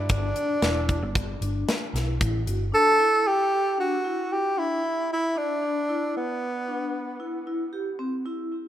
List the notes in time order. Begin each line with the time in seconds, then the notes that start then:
0.09 G1 D4, kick, closed hi-hat
0.36 D4, closed hi-hat
0.62 E1 E4, snare, closed hi-hat
0.89 kick, closed hi-hat
1.02 G1
1.15 kick, closed hi-hat
1.41 G1 D4, closed hi-hat
1.69 snare, closed hi-hat
1.94 B1 E4, snare, closed hi-hat
2.21 A1 E4, kick, closed hi-hat
2.47 G1 F#4, closed hi-hat
2.72 D4 A4
2.99 E4
3.27 G4
3.78 D4 F#4
4.05 E4
4.33 G4
4.56 D4 E4
4.84 E4
5.13 E4
5.36 D4
5.62 D4
5.89 E4
6.17 B3
6.68 D4
7.20 E4
7.47 E4
7.73 G4
7.99 C4
8.26 E4